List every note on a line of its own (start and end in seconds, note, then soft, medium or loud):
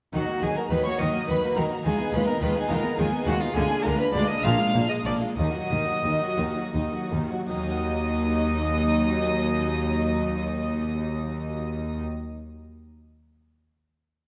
0.13 0.22 D#2 medium
0.13 0.39 D#3 medium
0.13 0.22 D#3 medium
0.13 0.27 F#3 medium
0.13 0.27 D#4 medium
0.13 0.44 F#4 medium
0.13 0.22 F#5 medium
0.28 0.42 A#3 medium
0.28 0.42 F#4 medium
0.41 0.51 D#2 medium
0.41 0.68 D#3 medium
0.41 0.50 D#3 medium
0.41 0.57 F#3 medium
0.41 0.56 D#4 medium
0.41 0.58 G#4 medium
0.41 0.57 G#5 medium
0.56 0.71 A#3 soft
0.56 0.71 F#4 medium
0.56 0.69 A#4 medium
0.56 0.71 A#5 medium
0.70 0.79 D#2 medium
0.70 0.97 D#3 medium
0.70 0.79 D#3 medium
0.70 0.84 F#3 medium
0.70 0.84 D#4 medium
0.70 0.84 B4 medium
0.70 0.86 B5 loud
0.84 1.00 A#3 medium
0.84 1.01 F#4 medium
0.84 1.01 C#5 medium
0.84 1.00 C#6 loud
0.99 1.08 D#2 medium
0.99 1.25 D#3 soft
0.99 1.08 D#3 medium
0.99 1.15 F#3 medium
0.99 1.61 A#3 soft
0.99 1.61 D#4 soft
0.99 1.15 D#4 medium
0.99 1.62 A#4 medium
0.99 1.27 D#5 medium
0.99 1.29 D#6 loud
1.14 1.29 A#3 medium
1.14 1.28 F#4 medium
1.27 1.36 D#2 medium
1.27 1.53 D#3 medium
1.27 1.36 D#3 medium
1.27 1.42 F#3 medium
1.27 1.42 D#4 medium
1.27 1.56 B4 medium
1.27 1.57 B5 loud
1.43 1.57 A#3 medium
1.43 1.57 F#4 medium
1.56 1.65 D#2 medium
1.56 1.82 D#3 medium
1.56 1.64 D#3 medium
1.56 1.71 F#3 medium
1.56 1.71 D#4 medium
1.56 1.65 A#4 medium
1.56 1.85 A#5 medium
1.71 1.85 A#3 medium
1.71 1.85 F#4 medium
1.84 1.93 D#2 medium
1.84 2.10 D#3 medium
1.84 1.93 D#3 medium
1.84 1.98 G#3 medium
1.84 1.98 F4 medium
1.84 2.16 G#4 medium
1.84 2.13 G#5 loud
1.99 2.13 B3 medium
1.99 2.13 D#4 medium
2.12 2.21 D#2 medium
2.12 2.38 D#3 medium
2.12 2.21 D#3 medium
2.12 2.27 G#3 medium
2.12 2.27 F4 medium
2.12 2.29 B4 medium
2.12 2.27 B5 medium
2.27 2.41 B3 medium
2.27 2.42 D#4 medium
2.27 2.44 A#4 medium
2.27 2.41 A#5 medium
2.41 2.49 D#2 medium
2.41 2.66 D#3 medium
2.41 2.50 D#3 medium
2.41 2.54 G#3 medium
2.41 2.54 F4 medium
2.41 2.57 B4 medium
2.41 2.55 B5 loud
2.55 2.69 B3 medium
2.55 2.70 D#4 medium
2.55 2.69 G#4 medium
2.55 2.70 G#5 loud
2.69 2.78 D#2 medium
2.69 2.94 D#3 medium
2.69 2.78 D#3 medium
2.69 2.83 G#3 medium
2.69 3.31 B3 soft
2.69 3.31 F4 soft
2.69 2.84 F4 medium
2.69 3.31 G#4 soft
2.69 2.98 A#4 medium
2.69 2.97 A#5 medium
2.83 2.97 B3 medium
2.83 2.98 D#4 medium
2.97 3.06 D#2 medium
2.97 3.23 D#3 medium
2.97 3.06 D#3 medium
2.97 3.11 G#3 medium
2.97 3.11 F4 medium
2.97 3.06 G#4 medium
2.97 3.26 G#5 loud
3.12 3.26 B3 medium
3.12 3.26 D#4 medium
3.26 3.34 D#2 medium
3.26 3.52 D#3 medium
3.26 3.35 D#3 medium
3.26 3.40 G#3 medium
3.26 3.41 F4 medium
3.26 3.42 F#4 medium
3.26 3.41 F#5 medium
3.40 3.55 B3 medium
3.40 3.55 D#4 medium
3.40 3.55 F4 medium
3.40 3.56 F5 loud
3.54 3.63 D2 loud
3.54 3.81 D3 medium
3.54 3.63 D3 medium
3.54 3.69 G#3 medium
3.54 4.39 A#3 medium
3.54 3.68 F4 medium
3.54 4.40 F4 medium
3.54 3.84 G#4 loud
3.54 4.40 A#4 soft
3.54 3.84 G#5 loud
3.70 3.84 A#3 medium
3.70 3.84 D4 medium
3.82 3.93 D2 medium
3.82 4.11 D3 medium
3.82 3.93 D3 medium
3.82 3.99 G#3 medium
3.82 3.99 F4 medium
3.82 3.97 A#4 medium
3.82 3.99 A#5 loud
3.98 4.13 A#3 medium
3.98 4.13 D4 medium
3.98 4.04 B4 medium
3.98 4.15 B5 loud
4.13 4.22 D2 medium
4.13 4.22 D3 medium
4.13 4.41 D3 medium
4.13 4.27 G#3 medium
4.13 4.28 F4 medium
4.13 4.29 D5 medium
4.13 4.29 D6 loud
4.27 4.42 A#3 medium
4.27 4.42 D4 medium
4.27 4.45 D#5 medium
4.27 4.44 D#6 loud
4.43 4.53 A#1 medium
4.43 4.52 A#2 loud
4.43 4.71 A#2 medium
4.43 4.57 A#3 medium
4.43 5.34 A#3 medium
4.43 4.57 D4 medium
4.43 5.34 D4 soft
4.43 5.34 G#4 soft
4.43 4.89 F5 loud
4.43 4.90 F6 loud
4.58 4.74 G#3 medium
4.58 4.74 F4 medium
4.73 4.83 A#1 medium
4.73 5.02 A#2 medium
4.73 4.82 A#2 medium
4.73 4.90 A#3 medium
4.73 4.89 D4 medium
4.89 5.05 G#3 medium
4.89 5.05 F4 medium
4.89 4.96 D#5 medium
4.89 5.05 D#6 loud
5.04 5.13 A#1 medium
5.04 5.34 A#2 medium
5.04 5.13 A#2 medium
5.04 5.20 A#3 medium
5.04 5.20 D4 medium
5.04 5.13 D5 medium
5.04 5.13 D6 medium
5.20 5.37 G#3 medium
5.20 5.37 F4 medium
5.37 5.67 D#2 medium
5.37 5.45 D#2 medium
5.37 5.46 D#2 medium
5.37 5.53 D#3 medium
5.37 5.53 D#4 medium
5.37 7.08 D#5 loud
5.37 7.08 D#6 loud
5.54 5.71 F#3 medium
5.54 5.70 F#4 medium
5.70 6.01 D#2 medium
5.70 5.78 D#2 medium
5.70 5.87 D#3 medium
5.70 5.87 D#4 medium
5.87 6.04 F#3 medium
5.87 6.04 F#4 medium
6.04 6.12 D#2 medium
6.04 6.35 D#2 medium
6.04 6.12 D#2 medium
6.04 6.20 D#3 medium
6.04 6.20 D#4 medium
6.21 6.39 F#3 medium
6.21 6.39 F#4 medium
6.38 6.71 D#2 soft
6.38 6.46 D#2 medium
6.38 6.47 D#2 medium
6.38 6.57 D#3 medium
6.38 7.18 A#3 soft
6.38 7.18 D#4 soft
6.38 6.57 D#4 medium
6.38 7.19 F#4 soft
6.56 6.74 F#3 medium
6.56 6.75 F#4 medium
6.73 7.07 D#2 medium
6.73 6.82 D#2 medium
6.73 6.83 D#2 medium
6.73 6.92 D#3 medium
6.73 6.92 D#4 medium
6.93 7.12 F#3 medium
6.93 7.12 F#4 medium
7.11 7.46 D#2 medium
7.11 7.19 D#2 medium
7.11 7.20 D#2 medium
7.11 7.31 D#3 medium
7.11 7.31 D#4 medium
7.31 7.49 F#3 medium
7.31 7.50 F#4 medium
7.49 12.03 D#2 medium
7.49 12.02 D#3 medium
7.49 12.03 F#3 medium
7.49 12.04 D#4 medium
7.49 12.02 D#5 medium
7.49 12.02 D#6 loud
7.56 12.09 A#3 medium
7.63 12.17 D#4 medium
7.71 12.24 F#4 medium
7.77 12.30 D#5 medium